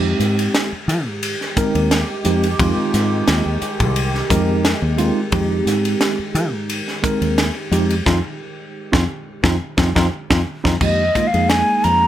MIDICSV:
0, 0, Header, 1, 7, 480
1, 0, Start_track
1, 0, Key_signature, -4, "minor"
1, 0, Tempo, 684932
1, 1816, Time_signature, 4, 2, 24, 8
1, 8461, End_track
2, 0, Start_track
2, 0, Title_t, "Flute"
2, 0, Program_c, 0, 73
2, 7584, Note_on_c, 0, 75, 75
2, 7899, Note_on_c, 0, 77, 72
2, 7910, Note_off_c, 0, 75, 0
2, 8054, Note_on_c, 0, 80, 80
2, 8065, Note_off_c, 0, 77, 0
2, 8299, Note_on_c, 0, 82, 90
2, 8309, Note_off_c, 0, 80, 0
2, 8461, Note_off_c, 0, 82, 0
2, 8461, End_track
3, 0, Start_track
3, 0, Title_t, "Tine electric piano"
3, 0, Program_c, 1, 4
3, 0, Note_on_c, 1, 56, 64
3, 0, Note_on_c, 1, 60, 65
3, 0, Note_on_c, 1, 63, 65
3, 0, Note_on_c, 1, 67, 83
3, 478, Note_off_c, 1, 56, 0
3, 478, Note_off_c, 1, 60, 0
3, 480, Note_off_c, 1, 63, 0
3, 481, Note_off_c, 1, 67, 0
3, 1095, Note_on_c, 1, 56, 74
3, 1098, Note_on_c, 1, 60, 68
3, 1098, Note_on_c, 1, 63, 64
3, 1104, Note_on_c, 1, 70, 80
3, 1387, Note_off_c, 1, 56, 0
3, 1388, Note_off_c, 1, 60, 0
3, 1388, Note_off_c, 1, 63, 0
3, 1392, Note_off_c, 1, 70, 0
3, 1572, Note_on_c, 1, 56, 81
3, 1575, Note_on_c, 1, 60, 74
3, 1578, Note_on_c, 1, 63, 67
3, 1582, Note_on_c, 1, 67, 78
3, 1724, Note_off_c, 1, 56, 0
3, 1726, Note_off_c, 1, 60, 0
3, 1727, Note_off_c, 1, 63, 0
3, 1729, Note_off_c, 1, 67, 0
3, 1817, Note_on_c, 1, 56, 66
3, 1820, Note_on_c, 1, 60, 65
3, 1820, Note_on_c, 1, 63, 64
3, 1822, Note_on_c, 1, 65, 86
3, 2398, Note_off_c, 1, 56, 0
3, 2400, Note_off_c, 1, 60, 0
3, 2400, Note_off_c, 1, 63, 0
3, 2401, Note_off_c, 1, 65, 0
3, 3013, Note_on_c, 1, 56, 79
3, 3014, Note_on_c, 1, 60, 75
3, 3017, Note_on_c, 1, 63, 74
3, 3018, Note_on_c, 1, 70, 83
3, 3304, Note_off_c, 1, 56, 0
3, 3305, Note_off_c, 1, 60, 0
3, 3307, Note_off_c, 1, 63, 0
3, 3307, Note_off_c, 1, 70, 0
3, 3484, Note_on_c, 1, 56, 85
3, 3487, Note_on_c, 1, 60, 72
3, 3488, Note_on_c, 1, 63, 71
3, 3492, Note_on_c, 1, 65, 82
3, 3639, Note_off_c, 1, 56, 0
3, 3641, Note_off_c, 1, 60, 0
3, 3641, Note_off_c, 1, 63, 0
3, 3643, Note_off_c, 1, 65, 0
3, 3730, Note_on_c, 1, 56, 76
3, 3734, Note_on_c, 1, 60, 62
3, 3734, Note_on_c, 1, 63, 68
3, 3736, Note_on_c, 1, 67, 77
3, 4314, Note_off_c, 1, 56, 0
3, 4316, Note_off_c, 1, 60, 0
3, 4316, Note_off_c, 1, 63, 0
3, 4317, Note_off_c, 1, 67, 0
3, 4922, Note_on_c, 1, 56, 80
3, 4923, Note_on_c, 1, 60, 68
3, 4929, Note_on_c, 1, 63, 66
3, 4931, Note_on_c, 1, 70, 87
3, 5218, Note_off_c, 1, 56, 0
3, 5219, Note_off_c, 1, 60, 0
3, 5222, Note_off_c, 1, 63, 0
3, 5222, Note_off_c, 1, 70, 0
3, 5406, Note_on_c, 1, 56, 85
3, 5409, Note_on_c, 1, 60, 75
3, 5413, Note_on_c, 1, 63, 71
3, 5414, Note_on_c, 1, 67, 85
3, 5560, Note_off_c, 1, 56, 0
3, 5561, Note_off_c, 1, 60, 0
3, 5563, Note_off_c, 1, 63, 0
3, 5563, Note_off_c, 1, 67, 0
3, 5649, Note_on_c, 1, 63, 83
3, 5649, Note_on_c, 1, 65, 89
3, 5651, Note_on_c, 1, 60, 72
3, 5732, Note_off_c, 1, 63, 0
3, 5732, Note_off_c, 1, 65, 0
3, 5733, Note_off_c, 1, 60, 0
3, 6252, Note_on_c, 1, 63, 74
3, 6253, Note_on_c, 1, 60, 87
3, 6254, Note_on_c, 1, 65, 86
3, 6327, Note_off_c, 1, 60, 0
3, 6327, Note_off_c, 1, 63, 0
3, 6328, Note_off_c, 1, 65, 0
3, 6610, Note_on_c, 1, 65, 77
3, 6611, Note_on_c, 1, 60, 82
3, 6611, Note_on_c, 1, 63, 84
3, 6693, Note_off_c, 1, 60, 0
3, 6693, Note_off_c, 1, 65, 0
3, 6694, Note_off_c, 1, 63, 0
3, 6849, Note_on_c, 1, 60, 87
3, 6850, Note_on_c, 1, 63, 82
3, 6851, Note_on_c, 1, 65, 81
3, 6933, Note_off_c, 1, 60, 0
3, 6933, Note_off_c, 1, 63, 0
3, 6934, Note_off_c, 1, 65, 0
3, 6975, Note_on_c, 1, 63, 99
3, 6976, Note_on_c, 1, 60, 96
3, 6978, Note_on_c, 1, 65, 97
3, 7049, Note_off_c, 1, 63, 0
3, 7050, Note_off_c, 1, 60, 0
3, 7050, Note_off_c, 1, 65, 0
3, 7218, Note_on_c, 1, 65, 81
3, 7219, Note_on_c, 1, 60, 83
3, 7221, Note_on_c, 1, 63, 87
3, 7291, Note_off_c, 1, 60, 0
3, 7291, Note_off_c, 1, 65, 0
3, 7292, Note_off_c, 1, 63, 0
3, 7456, Note_on_c, 1, 60, 89
3, 7456, Note_on_c, 1, 65, 83
3, 7457, Note_on_c, 1, 63, 100
3, 7530, Note_off_c, 1, 60, 0
3, 7530, Note_off_c, 1, 65, 0
3, 7531, Note_off_c, 1, 63, 0
3, 7573, Note_on_c, 1, 56, 52
3, 7575, Note_on_c, 1, 58, 47
3, 7576, Note_on_c, 1, 63, 50
3, 7581, Note_on_c, 1, 67, 59
3, 7724, Note_off_c, 1, 56, 0
3, 7725, Note_off_c, 1, 58, 0
3, 7725, Note_off_c, 1, 63, 0
3, 7728, Note_off_c, 1, 67, 0
3, 7814, Note_on_c, 1, 56, 68
3, 7816, Note_on_c, 1, 58, 59
3, 7820, Note_on_c, 1, 63, 53
3, 7822, Note_on_c, 1, 65, 70
3, 7891, Note_off_c, 1, 56, 0
3, 7892, Note_off_c, 1, 58, 0
3, 7894, Note_off_c, 1, 63, 0
3, 7895, Note_off_c, 1, 65, 0
3, 7944, Note_on_c, 1, 56, 65
3, 7946, Note_on_c, 1, 58, 56
3, 7947, Note_on_c, 1, 63, 57
3, 7951, Note_on_c, 1, 68, 70
3, 8461, Note_off_c, 1, 56, 0
3, 8461, Note_off_c, 1, 58, 0
3, 8461, Note_off_c, 1, 63, 0
3, 8461, Note_off_c, 1, 68, 0
3, 8461, End_track
4, 0, Start_track
4, 0, Title_t, "Ambient pad"
4, 0, Program_c, 2, 92
4, 0, Note_on_c, 2, 51, 88
4, 0, Note_on_c, 2, 56, 66
4, 0, Note_on_c, 2, 67, 86
4, 7546, Note_off_c, 2, 51, 0
4, 7547, Note_off_c, 2, 56, 0
4, 7548, Note_off_c, 2, 67, 0
4, 8461, End_track
5, 0, Start_track
5, 0, Title_t, "Fingered electric bass"
5, 0, Program_c, 3, 33
5, 0, Note_on_c, 3, 41, 96
5, 95, Note_off_c, 3, 41, 0
5, 137, Note_on_c, 3, 44, 70
5, 332, Note_off_c, 3, 44, 0
5, 615, Note_on_c, 3, 53, 88
5, 746, Note_off_c, 3, 53, 0
5, 746, Note_on_c, 3, 44, 69
5, 940, Note_off_c, 3, 44, 0
5, 1227, Note_on_c, 3, 39, 91
5, 1420, Note_off_c, 3, 39, 0
5, 1579, Note_on_c, 3, 41, 83
5, 1773, Note_off_c, 3, 41, 0
5, 1821, Note_on_c, 3, 41, 94
5, 1922, Note_off_c, 3, 41, 0
5, 2059, Note_on_c, 3, 44, 86
5, 2252, Note_off_c, 3, 44, 0
5, 2298, Note_on_c, 3, 39, 95
5, 2401, Note_off_c, 3, 39, 0
5, 2423, Note_on_c, 3, 39, 65
5, 2514, Note_off_c, 3, 39, 0
5, 2664, Note_on_c, 3, 36, 82
5, 2949, Note_off_c, 3, 36, 0
5, 3019, Note_on_c, 3, 41, 78
5, 3315, Note_off_c, 3, 41, 0
5, 3379, Note_on_c, 3, 39, 77
5, 3575, Note_off_c, 3, 39, 0
5, 3731, Note_on_c, 3, 41, 110
5, 3927, Note_off_c, 3, 41, 0
5, 3967, Note_on_c, 3, 44, 79
5, 4164, Note_off_c, 3, 44, 0
5, 4447, Note_on_c, 3, 53, 84
5, 4574, Note_off_c, 3, 53, 0
5, 4574, Note_on_c, 3, 44, 76
5, 4771, Note_off_c, 3, 44, 0
5, 5057, Note_on_c, 3, 39, 82
5, 5253, Note_off_c, 3, 39, 0
5, 5407, Note_on_c, 3, 41, 97
5, 5604, Note_off_c, 3, 41, 0
5, 5652, Note_on_c, 3, 41, 98
5, 5747, Note_off_c, 3, 41, 0
5, 6261, Note_on_c, 3, 41, 79
5, 6344, Note_off_c, 3, 41, 0
5, 6613, Note_on_c, 3, 41, 92
5, 6708, Note_off_c, 3, 41, 0
5, 6855, Note_on_c, 3, 41, 89
5, 6949, Note_off_c, 3, 41, 0
5, 6981, Note_on_c, 3, 41, 104
5, 7064, Note_off_c, 3, 41, 0
5, 7224, Note_on_c, 3, 41, 78
5, 7306, Note_off_c, 3, 41, 0
5, 7464, Note_on_c, 3, 41, 89
5, 7546, Note_off_c, 3, 41, 0
5, 7575, Note_on_c, 3, 41, 84
5, 7769, Note_off_c, 3, 41, 0
5, 7946, Note_on_c, 3, 41, 73
5, 8140, Note_off_c, 3, 41, 0
5, 8302, Note_on_c, 3, 41, 75
5, 8461, Note_off_c, 3, 41, 0
5, 8461, End_track
6, 0, Start_track
6, 0, Title_t, "Muted fingered electric bass strokes"
6, 509, Note_on_c, 9, 29, 32
6, 579, Note_off_c, 9, 29, 0
6, 1944, Note_on_c, 9, 29, 40
6, 2014, Note_off_c, 9, 29, 0
6, 2536, Note_on_c, 9, 29, 40
6, 2606, Note_off_c, 9, 29, 0
6, 4338, Note_on_c, 9, 29, 29
6, 4408, Note_off_c, 9, 29, 0
6, 8461, End_track
7, 0, Start_track
7, 0, Title_t, "Drums"
7, 143, Note_on_c, 9, 44, 70
7, 143, Note_on_c, 9, 51, 53
7, 213, Note_off_c, 9, 44, 0
7, 213, Note_off_c, 9, 51, 0
7, 272, Note_on_c, 9, 51, 67
7, 342, Note_off_c, 9, 51, 0
7, 382, Note_on_c, 9, 38, 99
7, 382, Note_on_c, 9, 51, 69
7, 452, Note_off_c, 9, 38, 0
7, 452, Note_off_c, 9, 51, 0
7, 625, Note_on_c, 9, 44, 70
7, 625, Note_on_c, 9, 51, 59
7, 695, Note_off_c, 9, 44, 0
7, 695, Note_off_c, 9, 51, 0
7, 860, Note_on_c, 9, 51, 90
7, 930, Note_off_c, 9, 51, 0
7, 989, Note_on_c, 9, 38, 30
7, 1059, Note_off_c, 9, 38, 0
7, 1099, Note_on_c, 9, 36, 86
7, 1099, Note_on_c, 9, 44, 88
7, 1099, Note_on_c, 9, 51, 61
7, 1169, Note_off_c, 9, 36, 0
7, 1169, Note_off_c, 9, 44, 0
7, 1169, Note_off_c, 9, 51, 0
7, 1228, Note_on_c, 9, 51, 53
7, 1298, Note_off_c, 9, 51, 0
7, 1340, Note_on_c, 9, 38, 95
7, 1340, Note_on_c, 9, 51, 76
7, 1410, Note_off_c, 9, 38, 0
7, 1410, Note_off_c, 9, 51, 0
7, 1574, Note_on_c, 9, 44, 87
7, 1574, Note_on_c, 9, 51, 58
7, 1644, Note_off_c, 9, 44, 0
7, 1644, Note_off_c, 9, 51, 0
7, 1706, Note_on_c, 9, 51, 57
7, 1776, Note_off_c, 9, 51, 0
7, 1818, Note_on_c, 9, 36, 108
7, 1820, Note_on_c, 9, 51, 87
7, 1888, Note_off_c, 9, 36, 0
7, 1890, Note_off_c, 9, 51, 0
7, 2059, Note_on_c, 9, 38, 27
7, 2059, Note_on_c, 9, 44, 80
7, 2059, Note_on_c, 9, 51, 60
7, 2129, Note_off_c, 9, 38, 0
7, 2129, Note_off_c, 9, 44, 0
7, 2129, Note_off_c, 9, 51, 0
7, 2296, Note_on_c, 9, 38, 105
7, 2296, Note_on_c, 9, 51, 76
7, 2366, Note_off_c, 9, 38, 0
7, 2366, Note_off_c, 9, 51, 0
7, 2534, Note_on_c, 9, 44, 75
7, 2534, Note_on_c, 9, 51, 53
7, 2604, Note_off_c, 9, 44, 0
7, 2604, Note_off_c, 9, 51, 0
7, 2664, Note_on_c, 9, 36, 84
7, 2664, Note_on_c, 9, 51, 57
7, 2734, Note_off_c, 9, 36, 0
7, 2734, Note_off_c, 9, 51, 0
7, 2775, Note_on_c, 9, 51, 81
7, 2845, Note_off_c, 9, 51, 0
7, 2906, Note_on_c, 9, 38, 29
7, 2976, Note_off_c, 9, 38, 0
7, 3016, Note_on_c, 9, 36, 87
7, 3018, Note_on_c, 9, 44, 89
7, 3018, Note_on_c, 9, 51, 60
7, 3086, Note_off_c, 9, 36, 0
7, 3088, Note_off_c, 9, 44, 0
7, 3088, Note_off_c, 9, 51, 0
7, 3257, Note_on_c, 9, 38, 99
7, 3257, Note_on_c, 9, 51, 70
7, 3327, Note_off_c, 9, 38, 0
7, 3327, Note_off_c, 9, 51, 0
7, 3492, Note_on_c, 9, 44, 81
7, 3492, Note_on_c, 9, 51, 54
7, 3562, Note_off_c, 9, 44, 0
7, 3562, Note_off_c, 9, 51, 0
7, 3729, Note_on_c, 9, 51, 76
7, 3732, Note_on_c, 9, 36, 99
7, 3799, Note_off_c, 9, 51, 0
7, 3802, Note_off_c, 9, 36, 0
7, 3974, Note_on_c, 9, 38, 31
7, 3974, Note_on_c, 9, 44, 77
7, 3974, Note_on_c, 9, 51, 62
7, 4044, Note_off_c, 9, 38, 0
7, 4044, Note_off_c, 9, 44, 0
7, 4044, Note_off_c, 9, 51, 0
7, 4100, Note_on_c, 9, 51, 61
7, 4170, Note_off_c, 9, 51, 0
7, 4209, Note_on_c, 9, 38, 92
7, 4209, Note_on_c, 9, 51, 66
7, 4279, Note_off_c, 9, 38, 0
7, 4279, Note_off_c, 9, 51, 0
7, 4451, Note_on_c, 9, 44, 86
7, 4451, Note_on_c, 9, 51, 55
7, 4521, Note_off_c, 9, 44, 0
7, 4521, Note_off_c, 9, 51, 0
7, 4692, Note_on_c, 9, 51, 87
7, 4762, Note_off_c, 9, 51, 0
7, 4820, Note_on_c, 9, 38, 30
7, 4890, Note_off_c, 9, 38, 0
7, 4932, Note_on_c, 9, 36, 95
7, 4932, Note_on_c, 9, 44, 85
7, 4932, Note_on_c, 9, 51, 65
7, 5002, Note_off_c, 9, 36, 0
7, 5002, Note_off_c, 9, 44, 0
7, 5002, Note_off_c, 9, 51, 0
7, 5058, Note_on_c, 9, 51, 57
7, 5128, Note_off_c, 9, 51, 0
7, 5172, Note_on_c, 9, 38, 93
7, 5172, Note_on_c, 9, 51, 79
7, 5242, Note_off_c, 9, 38, 0
7, 5242, Note_off_c, 9, 51, 0
7, 5413, Note_on_c, 9, 44, 86
7, 5413, Note_on_c, 9, 51, 64
7, 5483, Note_off_c, 9, 44, 0
7, 5483, Note_off_c, 9, 51, 0
7, 5539, Note_on_c, 9, 51, 62
7, 5609, Note_off_c, 9, 51, 0
7, 5651, Note_on_c, 9, 36, 88
7, 5651, Note_on_c, 9, 38, 86
7, 5721, Note_off_c, 9, 36, 0
7, 5721, Note_off_c, 9, 38, 0
7, 6260, Note_on_c, 9, 36, 93
7, 6262, Note_on_c, 9, 38, 95
7, 6330, Note_off_c, 9, 36, 0
7, 6332, Note_off_c, 9, 38, 0
7, 6613, Note_on_c, 9, 36, 92
7, 6615, Note_on_c, 9, 38, 97
7, 6683, Note_off_c, 9, 36, 0
7, 6685, Note_off_c, 9, 38, 0
7, 6852, Note_on_c, 9, 38, 95
7, 6853, Note_on_c, 9, 36, 101
7, 6922, Note_off_c, 9, 38, 0
7, 6923, Note_off_c, 9, 36, 0
7, 6982, Note_on_c, 9, 36, 94
7, 6982, Note_on_c, 9, 38, 88
7, 7052, Note_off_c, 9, 36, 0
7, 7052, Note_off_c, 9, 38, 0
7, 7221, Note_on_c, 9, 38, 99
7, 7222, Note_on_c, 9, 36, 102
7, 7291, Note_off_c, 9, 38, 0
7, 7293, Note_off_c, 9, 36, 0
7, 7464, Note_on_c, 9, 36, 82
7, 7467, Note_on_c, 9, 38, 77
7, 7534, Note_off_c, 9, 36, 0
7, 7537, Note_off_c, 9, 38, 0
7, 7574, Note_on_c, 9, 49, 85
7, 7575, Note_on_c, 9, 36, 99
7, 7644, Note_off_c, 9, 49, 0
7, 7645, Note_off_c, 9, 36, 0
7, 7816, Note_on_c, 9, 36, 64
7, 7816, Note_on_c, 9, 44, 72
7, 7816, Note_on_c, 9, 51, 52
7, 7886, Note_off_c, 9, 36, 0
7, 7886, Note_off_c, 9, 44, 0
7, 7886, Note_off_c, 9, 51, 0
7, 7946, Note_on_c, 9, 51, 52
7, 8016, Note_off_c, 9, 51, 0
7, 8056, Note_on_c, 9, 38, 96
7, 8056, Note_on_c, 9, 51, 71
7, 8126, Note_off_c, 9, 38, 0
7, 8126, Note_off_c, 9, 51, 0
7, 8296, Note_on_c, 9, 44, 64
7, 8296, Note_on_c, 9, 51, 48
7, 8366, Note_off_c, 9, 44, 0
7, 8366, Note_off_c, 9, 51, 0
7, 8461, End_track
0, 0, End_of_file